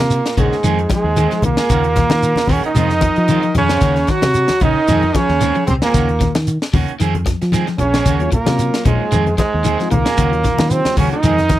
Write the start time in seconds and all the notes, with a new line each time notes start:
Already playing: A#2 A#3 A#4
0.00 C3
0.10 muted clean electric guitar stroke, closed hi-hat, shekere
0.26 snare, closed hi-hat
0.37 A#1 G#2 C#3 D#3 G#3 A#3 C#4 F#4 G#4, kick, closed hi-hat, high conga, low conga, shekere
0.52 snare
0.64 F2 D#3 G#3 C4 G#4, closed hi-hat, shekere
0.79 muted clean electric guitar stroke, closed hi-hat
0.90 G#2 F3 G#3 G#4, muted clean electric guitar stroke, kick, snare, closed hi-hat, high conga, shekere
1.04 D#2, muted clean electric guitar stroke
1.17 D#3 G#3 C4 G#4, closed hi-hat, high conga, shekere
1.31 F3, muted clean electric guitar stroke, snare, closed hi-hat
1.42 C2 A#2 D#3 A#3, muted clean electric guitar stroke, closed hi-hat, low conga, shekere
1.47 A#4
1.57 G#3 G#4, snare, closed hi-hat
1.70 D#2 C#3 D#3 A#3 C#4 F#4, kick, closed hi-hat, shekere
1.84 muted clean electric guitar stroke, closed hi-hat
1.96 D#3, muted clean electric guitar stroke, kick, snare, closed hi-hat, low conga, shekere
2.10 D#3, snare, closed hi-hat, high conga
2.23 muted clean electric guitar stroke, closed hi-hat, shekere
2.36 snare, closed hi-hat, high conga
2.47 D#2 D#3 A#3 C#4 F#4, muted clean electric guitar stroke, kick, open hi-hat, high conga, low conga, shekere
2.52 C#3 C#4 C#5
2.64 D#3 D#4 D#5, muted fingered electric bass stroke, closed hi-hat
2.75 F2 C3 D#3 G#3 C4 F4, closed hi-hat, low conga, shekere
2.90 muted clean electric guitar stroke, snare, closed hi-hat
3.01 F3, muted clean electric guitar stroke, kick, closed hi-hat, high conga, shekere
3.16 F3, muted clean electric guitar stroke, closed hi-hat
3.28 D#3 G#3 C4 F4, closed hi-hat, high conga, shekere
3.43 F3, muted clean electric guitar stroke, closed hi-hat
3.55 F2 C#3 D#3 C#4 C#5, muted clean electric guitar stroke, closed hi-hat, high conga, low conga, shekere
3.69 C4 F4, snare, closed hi-hat, high conga
3.81 D#2 C#3 D#3 A#3 C#4 F#4, kick, snare, closed hi-hat, shekere
3.96 muted clean electric guitar stroke, snare, closed hi-hat
4.07 D#3 F#3 F#4 F#5, muted clean electric guitar stroke, kick, snare, closed hi-hat, shekere
4.22 C3, snare, closed hi-hat, high conga
4.34 muted clean electric guitar stroke, closed hi-hat, shekere
4.48 snare, closed hi-hat, high conga
4.60 A#1 C#3 D#3 C#4 D#4, muted clean electric guitar stroke, kick, closed hi-hat, high conga, low conga, shekere
4.64 D#5
4.88 F2 D#3 G#3 C4 G#4, snare, closed hi-hat, low conga, shekere
5.02 muted clean electric guitar stroke, closed hi-hat, high conga
5.14 C#3 F3 C#4 C#5, muted clean electric guitar stroke, kick, snare, closed hi-hat, high conga, shekere
5.29 D#2, muted clean electric guitar stroke, snare
5.41 D#3 G#3 C4 G#4, snare, closed hi-hat, high conga, shekere
5.55 F3, muted clean electric guitar stroke, closed hi-hat
5.67 C2 C3 C4 C5, muted clean electric guitar stroke, closed hi-hat, high conga, low conga, shekere
5.82 A#2 G#3 A#3 C4 G#4 A#4, snare, closed hi-hat, high conga
5.94 D#2 C#3 D#3 A#3 C#4 F#4, kick, snare, closed hi-hat, shekere
6.09 muted clean electric guitar stroke, closed hi-hat
6.20 D#3, muted clean electric guitar stroke, kick, snare, closed hi-hat, low conga, shekere
6.35 D#3, snare, closed hi-hat, high conga
6.47 muted clean electric guitar stroke, closed hi-hat, shekere
6.62 snare, closed hi-hat
6.73 D#2 C#3 D#3 A#3 C#4 F#4, kick, open hi-hat, high conga, low conga, shekere
6.88 muted fingered electric bass stroke, closed hi-hat
7.00 F2 D#3 G#3 C4 G#4, closed hi-hat, shekere
7.15 muted clean electric guitar stroke, closed hi-hat, high conga
7.26 F3, muted clean electric guitar stroke, kick, snare, closed hi-hat, high conga, shekere
7.42 F3, muted clean electric guitar stroke, snare, closed hi-hat
7.52 D#3 G#3 C4 G#4, snare, closed hi-hat, high conga, shekere
7.67 F3, muted clean electric guitar stroke, snare, closed hi-hat
7.78 A#1 C#3 C#4 C#5, muted clean electric guitar stroke, closed hi-hat, low conga, shekere
7.94 G#3 C4 G#4, snare, closed hi-hat, high conga
8.05 D#2 C#3 D#3 A#3 C#4 F#4, kick, closed hi-hat, shekere
8.19 F#3 A#3 C#4 F4, muted clean electric guitar stroke, closed hi-hat
8.32 A#2 A#3 A#4, muted clean electric guitar stroke, kick, closed hi-hat, low conga, shekere
8.46 C3 F#3 A#3 C#4 F4, snare, closed hi-hat, high conga
8.59 muted clean electric guitar stroke, closed hi-hat, shekere
8.74 snare, closed hi-hat
8.85 A#1 G#2 A#2 D#3 G#3 A#3 C#4 G#4, kick, closed hi-hat, high conga, low conga, shekere
9.11 F2 D#3 G#3 C4 G#4, closed hi-hat, low conga, shekere
9.26 muted clean electric guitar stroke, closed hi-hat, high conga
9.38 G#2 G#3 G#4, muted clean electric guitar stroke, kick, snare, closed hi-hat, high conga, shekere
9.53 D#2, muted clean electric guitar stroke
9.64 D#3 G#3 C4 G#4, closed hi-hat, high conga, shekere
9.79 F3 G#3 C4 D#4 F4, muted clean electric guitar stroke, snare, closed hi-hat
9.90 C2 A#2 D#3 A#3 A#4, muted clean electric guitar stroke, closed hi-hat, low conga, shekere
10.05 G#3 G#4, muted clean electric guitar stroke, snare, closed hi-hat, high conga
10.18 D#2 C#3 D#3 A#3 C#4 F#4, kick, closed hi-hat, shekere
10.32 F#3 A#3 C#4 F4, muted clean electric guitar stroke, closed hi-hat
10.44 D#3, muted clean electric guitar stroke, kick, snare, closed hi-hat, low conga, shekere
10.58 D#3 F#3 A#3 C#4 F4, snare, closed hi-hat, high conga
10.70 C3 C4 C5, muted clean electric guitar stroke, closed hi-hat, shekere
10.85 snare, closed hi-hat, high conga
10.97 D#2 C#3 D#3 A#3 C#4 F#4 C#5, kick, open hi-hat, high conga, low conga, shekere
11.12 D#3 D#4 D#5, muted fingered electric bass stroke, closed hi-hat
11.23 F2 D#3 G#3 C4 G#4, closed hi-hat, low conga, shekere
11.38 muted clean electric guitar stroke, snare, closed hi-hat, high conga
11.49 D#3, muted clean electric guitar stroke, kick, snare, closed hi-hat, high conga, shekere